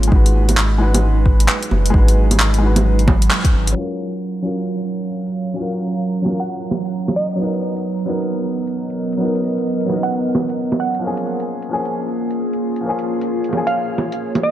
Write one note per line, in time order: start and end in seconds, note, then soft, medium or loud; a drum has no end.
0.00 0.10 G#1 medium
0.00 0.08 G#3 medium
0.00 0.12 A#3 medium
0.00 0.14 C#4 medium
0.00 0.12 F4 medium
0.00 0.14 F4 medium
0.00 1.11 G#4 medium
0.00 0.13 A#4 loud
0.00 1.34 C#5 medium
0.00 closed hi-hat medium
0.08 0.76 G#3 medium
0.08 0.77 D#4 medium
0.12 1.47 G#1 loud
0.12 3.76 G#3 medium
0.12 0.79 F#4 medium
0.12 0.80 B4 medium
0.12 kick loud
0.26 closed hi-hat soft
0.44 4.34 D#4 medium
0.49 closed hi-hat medium
0.49 low bongo soft
0.54 3.76 B4 medium
0.54 clap loud
0.78 0.90 G#3 medium
0.78 0.91 D#4 medium
0.78 0.91 F#4 medium
0.78 0.92 B4 loud
0.94 closed hi-hat medium
0.94 low bongo medium
1.09 11.03 F#3 medium
1.26 kick medium
1.40 closed hi-hat medium
1.48 clap medium
1.63 closed hi-hat soft
1.71 1.92 F#1 medium
1.71 low bongo soft
1.86 closed hi-hat medium
1.90 3.29 G#1 loud
1.90 2.57 G#3 medium
1.90 2.59 D#4 medium
1.90 kick loud
1.95 2.61 F#4 medium
1.95 2.62 B4 medium
2.08 closed hi-hat soft
2.31 closed hi-hat medium
2.31 low bongo soft
2.40 clap loud
2.54 closed hi-hat soft
2.58 3.72 G#3 medium
2.58 3.73 D#4 medium
2.64 3.74 F#4 medium
2.64 3.76 B4 medium
2.76 closed hi-hat medium
2.76 low bongo medium
2.99 closed hi-hat soft
3.08 kick loud
3.08 low bongo medium
3.22 closed hi-hat medium
3.30 clap medium
3.45 kick loud
3.45 closed hi-hat soft
3.53 3.74 G#1 medium
3.67 closed hi-hat medium
3.72 4.40 F#3 medium
3.72 4.41 C#4 medium
3.77 4.43 F4 medium
3.77 4.44 A#4 medium
3.90 8.60 F5 medium
3.90 closed hi-hat soft
4.13 closed hi-hat soft
4.28 8.52 C#5 medium
4.28 8.11 A#5 medium
4.36 closed hi-hat soft
4.42 4.54 F#3 medium
4.42 4.55 C#4 medium
4.42 4.55 F4 medium
4.42 4.56 A#4 medium
4.59 closed hi-hat medium
5.04 closed hi-hat soft
5.27 closed hi-hat soft
5.49 closed hi-hat medium
5.54 6.20 F#3 medium
5.54 6.23 C#4 medium
5.59 6.24 F4 medium
5.59 6.26 A#4 medium
5.72 closed hi-hat soft
5.95 closed hi-hat medium
6.17 closed hi-hat soft
6.22 7.34 F#3 medium
6.22 7.37 C#4 medium
6.22 low bongo soft
6.27 7.38 F4 medium
6.27 7.39 A#4 medium
6.40 6.63 F#5 medium
6.40 closed hi-hat medium
6.71 low bongo soft
6.86 closed hi-hat soft
7.08 closed hi-hat soft
7.08 low bongo soft
7.16 7.45 D#5 medium
7.31 closed hi-hat soft
7.35 8.03 F#3 medium
7.35 8.05 B3 medium
7.39 11.03 B3 medium
7.39 8.06 D#4 medium
7.43 8.07 A#4 medium
7.54 closed hi-hat soft
7.77 closed hi-hat medium
7.94 12.50 D#5 medium
7.99 closed hi-hat soft
8.05 8.17 F#3 medium
8.05 8.18 B3 medium
8.05 8.19 D#4 medium
8.05 8.19 A#4 medium
8.22 12.27 A#4 medium
8.22 closed hi-hat medium
8.67 closed hi-hat soft
8.90 closed hi-hat soft
9.13 closed hi-hat soft
9.17 9.84 F#3 medium
9.17 9.87 B3 medium
9.22 9.88 D#4 medium
9.22 9.89 A#4 medium
9.35 closed hi-hat soft
9.58 closed hi-hat soft
9.81 closed hi-hat soft
9.85 10.99 F#3 medium
9.85 11.00 B3 medium
9.85 low bongo soft
9.91 11.02 D#4 medium
9.91 11.03 A#4 medium
10.03 10.27 F#5 medium
10.03 closed hi-hat soft
10.35 low bongo soft
10.49 closed hi-hat soft
10.72 closed hi-hat soft
10.72 low bongo soft
10.80 11.08 F#5 medium
10.95 closed hi-hat soft
10.99 11.67 F3 medium
10.99 11.68 A#3 medium
10.99 14.51 A#3 medium
11.05 11.70 C#4 medium
11.05 11.71 G#4 medium
11.17 14.51 F4 medium
11.17 closed hi-hat soft
11.24 14.51 G#4 medium
11.40 closed hi-hat soft
11.62 closed hi-hat soft
11.69 11.81 F3 medium
11.69 11.82 A#3 medium
11.69 11.82 C#4 medium
11.73 11.83 G#4 medium
11.85 closed hi-hat soft
12.31 closed hi-hat soft
12.53 closed hi-hat soft
12.69 14.51 C#5 medium
12.76 closed hi-hat soft
12.81 13.47 F3 medium
12.81 13.50 A#3 medium
12.86 13.52 C#4 medium
12.86 13.53 G#4 medium
12.99 closed hi-hat soft
13.21 closed hi-hat soft
13.44 closed hi-hat soft
13.49 14.51 F3 medium
13.49 14.51 A#3 medium
13.49 low bongo soft
13.54 14.51 C#4 medium
13.54 14.51 G#4 medium
13.67 13.91 F5 medium
13.67 closed hi-hat soft
13.98 low bongo soft
14.12 closed hi-hat soft
14.35 closed hi-hat soft
14.35 low bongo soft
14.43 14.51 D#5 medium